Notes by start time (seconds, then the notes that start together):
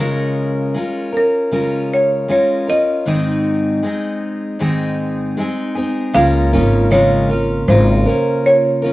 0.00 C#3 G#3 C#4 F4 A#4
0.74 G#3 C#4 F4 A#4
1.13 C#4 F4 A#4
1.17 A#4
1.51 C#3 G#3 C#4 F4 A#4
1.94 C#5
2.28 G#3 C#4 F4 A#4 C#5
2.67 C#4 F4 A#4 D#5
3.06 G#2 D#3 G#3 C4 D#4 G#4
3.83 G#3 C4 D#4 G#4
4.59 G#2 D#3 G#3 C4 D#4 G#4
5.37 G#3 C4 D#4 G#4
5.75 G#3 C4 D#4 G#4
6.14 C#2 C#3 G#3 A#3 C#4 F4 A#4 F5
6.53 G#1 C#3 G#3 C#4 F4 A#4
6.91 C#3 G#3 C#4 F4 A#4 C#5
7.29 C#4 F4 A#4
7.68 G#1 G#3 C#4 F4 A#4 C5
8.06 C#4 F4 A#4
8.46 C#5
8.82 C#4 F4 A#4